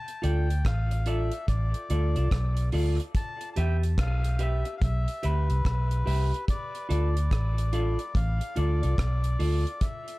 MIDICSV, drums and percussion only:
0, 0, Header, 1, 2, 480
1, 0, Start_track
1, 0, Tempo, 832293
1, 1816, Time_signature, 4, 2, 24, 8
1, 5875, End_track
2, 0, Start_track
2, 0, Title_t, "Drums"
2, 46, Note_on_c, 9, 42, 52
2, 104, Note_off_c, 9, 42, 0
2, 136, Note_on_c, 9, 42, 78
2, 193, Note_off_c, 9, 42, 0
2, 291, Note_on_c, 9, 42, 54
2, 349, Note_off_c, 9, 42, 0
2, 374, Note_on_c, 9, 36, 115
2, 377, Note_on_c, 9, 42, 91
2, 381, Note_on_c, 9, 37, 123
2, 432, Note_off_c, 9, 36, 0
2, 434, Note_off_c, 9, 42, 0
2, 439, Note_off_c, 9, 37, 0
2, 526, Note_on_c, 9, 42, 60
2, 584, Note_off_c, 9, 42, 0
2, 610, Note_on_c, 9, 42, 74
2, 668, Note_off_c, 9, 42, 0
2, 759, Note_on_c, 9, 42, 50
2, 816, Note_off_c, 9, 42, 0
2, 854, Note_on_c, 9, 36, 98
2, 855, Note_on_c, 9, 42, 88
2, 912, Note_off_c, 9, 36, 0
2, 913, Note_off_c, 9, 42, 0
2, 1005, Note_on_c, 9, 42, 59
2, 1062, Note_off_c, 9, 42, 0
2, 1095, Note_on_c, 9, 42, 64
2, 1153, Note_off_c, 9, 42, 0
2, 1245, Note_on_c, 9, 42, 47
2, 1303, Note_off_c, 9, 42, 0
2, 1334, Note_on_c, 9, 36, 103
2, 1336, Note_on_c, 9, 42, 86
2, 1339, Note_on_c, 9, 37, 110
2, 1392, Note_off_c, 9, 36, 0
2, 1393, Note_off_c, 9, 42, 0
2, 1397, Note_off_c, 9, 37, 0
2, 1480, Note_on_c, 9, 42, 60
2, 1538, Note_off_c, 9, 42, 0
2, 1570, Note_on_c, 9, 46, 75
2, 1628, Note_off_c, 9, 46, 0
2, 1729, Note_on_c, 9, 42, 47
2, 1787, Note_off_c, 9, 42, 0
2, 1815, Note_on_c, 9, 36, 109
2, 1815, Note_on_c, 9, 42, 99
2, 1872, Note_off_c, 9, 36, 0
2, 1872, Note_off_c, 9, 42, 0
2, 1966, Note_on_c, 9, 42, 57
2, 2023, Note_off_c, 9, 42, 0
2, 2056, Note_on_c, 9, 42, 81
2, 2113, Note_off_c, 9, 42, 0
2, 2211, Note_on_c, 9, 42, 52
2, 2269, Note_off_c, 9, 42, 0
2, 2294, Note_on_c, 9, 36, 115
2, 2296, Note_on_c, 9, 42, 94
2, 2301, Note_on_c, 9, 37, 111
2, 2352, Note_off_c, 9, 36, 0
2, 2354, Note_off_c, 9, 42, 0
2, 2359, Note_off_c, 9, 37, 0
2, 2448, Note_on_c, 9, 42, 62
2, 2505, Note_off_c, 9, 42, 0
2, 2532, Note_on_c, 9, 42, 80
2, 2590, Note_off_c, 9, 42, 0
2, 2684, Note_on_c, 9, 42, 46
2, 2741, Note_off_c, 9, 42, 0
2, 2777, Note_on_c, 9, 36, 114
2, 2780, Note_on_c, 9, 42, 88
2, 2835, Note_off_c, 9, 36, 0
2, 2837, Note_off_c, 9, 42, 0
2, 2929, Note_on_c, 9, 42, 58
2, 2987, Note_off_c, 9, 42, 0
2, 3017, Note_on_c, 9, 42, 58
2, 3075, Note_off_c, 9, 42, 0
2, 3171, Note_on_c, 9, 42, 48
2, 3228, Note_off_c, 9, 42, 0
2, 3259, Note_on_c, 9, 36, 111
2, 3263, Note_on_c, 9, 42, 83
2, 3267, Note_on_c, 9, 37, 114
2, 3316, Note_off_c, 9, 36, 0
2, 3321, Note_off_c, 9, 42, 0
2, 3324, Note_off_c, 9, 37, 0
2, 3409, Note_on_c, 9, 42, 60
2, 3466, Note_off_c, 9, 42, 0
2, 3502, Note_on_c, 9, 46, 78
2, 3560, Note_off_c, 9, 46, 0
2, 3658, Note_on_c, 9, 42, 47
2, 3716, Note_off_c, 9, 42, 0
2, 3739, Note_on_c, 9, 36, 118
2, 3741, Note_on_c, 9, 42, 104
2, 3796, Note_off_c, 9, 36, 0
2, 3799, Note_off_c, 9, 42, 0
2, 3892, Note_on_c, 9, 42, 52
2, 3950, Note_off_c, 9, 42, 0
2, 3983, Note_on_c, 9, 42, 79
2, 4040, Note_off_c, 9, 42, 0
2, 4134, Note_on_c, 9, 42, 59
2, 4191, Note_off_c, 9, 42, 0
2, 4218, Note_on_c, 9, 36, 115
2, 4221, Note_on_c, 9, 42, 88
2, 4225, Note_on_c, 9, 37, 117
2, 4275, Note_off_c, 9, 36, 0
2, 4279, Note_off_c, 9, 42, 0
2, 4283, Note_off_c, 9, 37, 0
2, 4373, Note_on_c, 9, 42, 67
2, 4430, Note_off_c, 9, 42, 0
2, 4457, Note_on_c, 9, 42, 76
2, 4515, Note_off_c, 9, 42, 0
2, 4607, Note_on_c, 9, 42, 49
2, 4665, Note_off_c, 9, 42, 0
2, 4700, Note_on_c, 9, 36, 109
2, 4704, Note_on_c, 9, 42, 85
2, 4757, Note_off_c, 9, 36, 0
2, 4761, Note_off_c, 9, 42, 0
2, 4851, Note_on_c, 9, 42, 64
2, 4908, Note_off_c, 9, 42, 0
2, 4938, Note_on_c, 9, 42, 62
2, 4996, Note_off_c, 9, 42, 0
2, 5093, Note_on_c, 9, 42, 50
2, 5151, Note_off_c, 9, 42, 0
2, 5180, Note_on_c, 9, 36, 105
2, 5182, Note_on_c, 9, 42, 89
2, 5186, Note_on_c, 9, 37, 108
2, 5237, Note_off_c, 9, 36, 0
2, 5240, Note_off_c, 9, 42, 0
2, 5243, Note_off_c, 9, 37, 0
2, 5328, Note_on_c, 9, 42, 56
2, 5386, Note_off_c, 9, 42, 0
2, 5420, Note_on_c, 9, 46, 75
2, 5478, Note_off_c, 9, 46, 0
2, 5577, Note_on_c, 9, 42, 45
2, 5634, Note_off_c, 9, 42, 0
2, 5658, Note_on_c, 9, 42, 111
2, 5659, Note_on_c, 9, 36, 121
2, 5716, Note_off_c, 9, 42, 0
2, 5717, Note_off_c, 9, 36, 0
2, 5812, Note_on_c, 9, 42, 57
2, 5870, Note_off_c, 9, 42, 0
2, 5875, End_track
0, 0, End_of_file